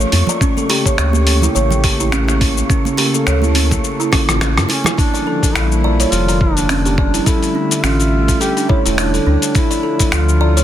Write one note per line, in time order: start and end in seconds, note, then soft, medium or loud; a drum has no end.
0.00 0.37 F3 medium
0.00 4.94 A3 medium
0.00 0.37 A#3 medium
0.00 0.39 F4 medium
0.00 5.00 C#6 medium
0.00 shaker soft
0.12 0.23 F2 loud
0.12 open hi-hat medium
0.12 high bongo medium
0.27 0.36 D5 medium
0.27 low conga medium
0.27 shaker medium
0.41 4.95 C#3 medium
0.41 4.95 A#3 medium
0.41 0.56 C#4 medium
0.41 2.68 G4 loud
0.41 kick loud
0.41 shaker soft
0.57 0.68 A4 medium
0.57 high conga medium
0.57 shaker soft
0.69 0.79 G4 loud
0.69 open hi-hat medium
0.69 high bongo medium
0.86 0.98 C#5 medium
0.86 kick medium
0.86 shaker medium
0.98 1.48 D2 medium
0.98 finger snap medium
0.98 shaker soft
1.13 high conga medium
1.13 shaker soft
1.27 open hi-hat medium
1.42 1.54 E4 medium
1.42 low conga medium
1.42 shaker medium
1.55 2.63 A1 medium
1.55 1.71 C#5 medium
1.55 high conga medium
1.55 shaker medium
1.71 low conga medium
1.71 shaker soft
1.84 1.93 G4 loud
1.84 kick medium
1.84 open hi-hat medium
2.00 2.12 E4 medium
2.00 shaker medium
2.12 2.40 C#4 loud
2.12 finger snap medium
2.12 shaker soft
2.28 finger snap soft
2.28 high bongo soft
2.28 shaker soft
2.41 2.68 C#4 medium
2.41 kick loud
2.41 open hi-hat medium
2.58 shaker medium
2.69 2.85 C#4 medium
2.69 4.96 A4 medium
2.69 kick loud
2.69 shaker soft
2.85 high conga medium
2.85 shaker soft
2.97 3.07 G4 loud
2.97 open hi-hat medium
2.97 high bongo soft
3.14 3.26 A4 medium
3.14 shaker medium
3.27 3.77 D2 loud
3.27 3.41 C#5 medium
3.27 finger snap loud
3.27 shaker medium
3.42 3.55 E4 medium
3.42 high conga medium
3.42 shaker soft
3.54 3.98 C#4 medium
3.54 open hi-hat loud
3.54 high conga soft
3.71 kick medium
3.71 low conga medium
3.71 shaker medium
3.84 shaker soft
4.00 4.07 E4 medium
4.00 shaker soft
4.12 4.27 C#4 medium
4.12 kick loud
4.12 cross-stick medium
4.12 open hi-hat medium
4.12 high bongo soft
4.12 high conga soft
4.28 4.59 A1 medium
4.28 cross-stick medium
4.28 shaker medium
4.41 finger snap loud
4.41 cross-stick medium
4.41 shaker soft
4.57 4.65 G2 medium
4.57 cross-stick medium
4.57 shaker soft
4.69 4.96 C#4 medium
4.69 open hi-hat medium
4.69 high bongo medium
4.84 4.97 E4 medium
4.84 cross-stick medium
4.84 low conga medium
4.84 shaker medium
4.98 9.51 D3 medium
4.98 7.25 F3 medium
4.98 9.51 G3 medium
4.98 7.25 A#3 medium
4.98 5.13 D4 medium
4.98 5.57 D4 medium
4.98 kick loud
4.98 open hi-hat medium
4.98 shaker medium
5.14 5.21 D5 medium
5.14 open hi-hat soft
5.14 shaker soft
5.27 5.83 A4 medium
5.43 kick medium
5.43 open hi-hat soft
5.43 shaker medium
5.55 6.05 A#1 loud
5.55 6.14 E4 medium
5.55 finger snap loud
5.55 open hi-hat medium
5.55 shaker medium
5.72 shaker soft
5.84 5.99 D5 loud
6.00 6.07 C#5 medium
6.00 open hi-hat soft
6.00 shaker medium
6.12 7.19 F1 loud
6.12 6.41 F4 loud
6.12 open hi-hat medium
6.12 shaker medium
6.28 6.36 D5 medium
6.28 open hi-hat soft
6.28 shaker soft
6.41 6.94 D4 medium
6.41 kick loud
6.57 open hi-hat soft
6.57 shaker medium
6.69 6.79 C#4 medium
6.69 finger snap loud
6.69 open hi-hat medium
6.69 shaker medium
6.85 6.97 G4 medium
6.85 open hi-hat soft
6.85 shaker soft
6.98 7.29 D4 medium
6.98 7.13 D5 medium
6.98 kick loud
7.14 7.21 E4 medium
7.14 open hi-hat soft
7.14 shaker medium
7.26 9.53 A3 medium
7.26 7.85 E4 loud
7.26 7.42 A4 loud
7.26 9.53 E5 loud
7.26 kick loud
7.26 open hi-hat medium
7.26 shaker medium
7.43 open hi-hat soft
7.43 shaker soft
7.55 7.83 D4 medium
7.71 open hi-hat soft
7.71 shaker medium
7.83 8.34 A1 medium
7.83 7.93 C#4 medium
7.83 8.40 F4 loud
7.83 finger snap loud
7.83 open hi-hat medium
7.83 shaker medium
8.00 open hi-hat soft
8.00 shaker soft
8.28 kick medium
8.28 open hi-hat soft
8.28 shaker medium
8.40 8.68 G4 loud
8.40 8.56 A4 medium
8.40 open hi-hat medium
8.40 shaker medium
8.57 8.69 D4 medium
8.57 open hi-hat soft
8.57 shaker soft
8.69 8.82 E4 loud
8.69 8.84 C#5 loud
8.69 kick loud
8.85 9.19 E1 medium
8.85 8.97 E4 medium
8.85 open hi-hat soft
8.85 shaker medium
8.98 9.51 D4 loud
8.98 finger snap loud
8.98 open hi-hat medium
8.98 shaker medium
9.14 9.25 A4 medium
9.14 open hi-hat soft
9.14 shaker soft
9.26 9.37 D2 loud
9.26 9.36 D4 medium
9.42 open hi-hat soft
9.42 shaker medium
9.55 10.64 D3 medium
9.55 10.64 F3 medium
9.55 10.64 A3 medium
9.55 9.70 D4 medium
9.55 10.64 D4 medium
9.55 10.15 E4 loud
9.55 kick loud
9.55 open hi-hat soft
9.55 shaker medium
9.71 9.78 D5 medium
9.71 open hi-hat soft
9.71 shaker soft
9.83 10.40 A4 medium
9.99 kick medium
9.99 open hi-hat soft
9.99 shaker medium
10.12 10.62 D2 medium
10.12 10.64 F4 loud
10.12 finger snap loud
10.12 open hi-hat medium
10.12 shaker medium
10.29 shaker soft
10.41 10.56 D5 medium
10.57 10.64 C#5 medium
10.57 open hi-hat soft
10.57 shaker medium